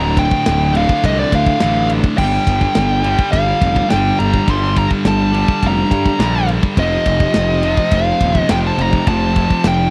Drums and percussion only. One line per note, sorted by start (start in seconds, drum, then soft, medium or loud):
0.17 kick medium
0.17 ride medium
0.31 kick medium
0.46 snare loud
0.46 ride loud
0.75 ride medium
0.89 kick medium
1.04 kick loud
1.04 ride loud
1.32 kick medium
1.32 ride medium
1.46 kick loud
1.60 snare loud
1.60 ride loud
1.90 ride medium
2.04 kick loud
2.18 kick loud
2.18 crash loud
2.47 kick medium
2.47 ride medium
2.61 kick medium
2.75 snare loud
2.75 ride loud
3.04 ride medium
3.19 kick medium
3.33 kick loud
3.33 ride loud
3.62 kick medium
3.62 ride medium
3.76 kick medium
3.90 snare loud
3.90 ride loud
4.20 ride medium
4.34 kick medium
4.48 kick loud
4.48 ride loud
4.76 kick medium
4.76 ride medium
4.91 kick medium
5.05 snare loud
5.05 ride medium
5.34 ride medium
5.48 kick medium
5.63 kick loud
5.63 ride loud
5.91 kick medium
5.91 ride medium
6.06 kick medium
6.20 snare loud
6.20 ride loud
6.48 ride medium
6.63 kick medium
6.77 kick loud
6.77 ride loud
7.06 kick medium
7.06 ride medium
7.20 kick loud
7.34 snare loud
7.34 ride loud
7.63 ride medium
7.77 kick medium
7.91 kick loud
7.91 ride loud
8.21 kick medium
8.21 ride medium
8.35 kick medium
8.49 snare loud
8.49 ride loud
8.78 ride medium
8.93 kick medium
9.07 kick loud
9.07 ride loud
9.36 kick medium
9.36 ride medium
9.50 kick medium
9.64 snare loud
9.64 ride loud